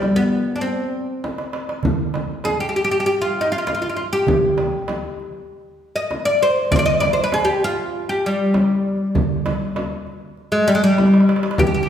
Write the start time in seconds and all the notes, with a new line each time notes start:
Already playing: G3
0.02 darbuka tek, frame drum
0.16 B3
0.32 darbuka ka
0.48 darbuka ka
0.56 D4
0.61 C4
0.93 darbuka ka
1.24 darbuka tek, frame drum
1.38 darbuka ka
1.53 darbuka tek
1.69 darbuka ka
1.83 darbuka dum, frame drum
2.14 darbuka tek, frame drum
2.44 G#4, darbuka tek, frame drum
2.60 G4
2.69 G4
2.75 G4, darbuka ka
2.84 G4
2.91 G4
3.00 G4
3.06 G4
3.21 F4
3.41 D#4
3.52 F4
3.58 F4
3.67 F4, darbuka tek, frame drum
3.75 F4
3.82 F4
3.89 F4
3.96 F4
4.13 G4
4.27 darbuka dum, frame drum
4.58 darbuka tek, frame drum
4.88 darbuka tek, frame drum
5.20 darbuka ka
5.96 D#5
6.11 darbuka tek, frame drum
6.25 D5
6.42 C5
6.71 D5, darbuka dum, frame drum
6.76 C5 D5
6.86 D#5
7.00 D5, darbuka tek, frame drum
7.13 C5
7.24 B4
7.32 G#4, darbuka tek, frame drum
7.45 G4
7.63 F4, darbuka ka
8.09 G4
8.26 G3
8.54 darbuka tek, frame drum
9.15 darbuka dum, frame drum
9.46 darbuka tek, frame drum
9.76 darbuka tek, frame drum
10.07 darbuka ka
10.37 darbuka ka
10.52 G#3
10.68 G3
10.75 G#3
10.84 G3
10.98 darbuka tek, frame drum
11.05 darbuka ka
11.14 darbuka tek
11.20 darbuka ka
11.29 darbuka tek
11.36 darbuka ka
11.43 darbuka tek
11.51 darbuka ka
11.58 G4, frame drum, darbuka dum
11.67 G4
11.74 G4
11.83 G4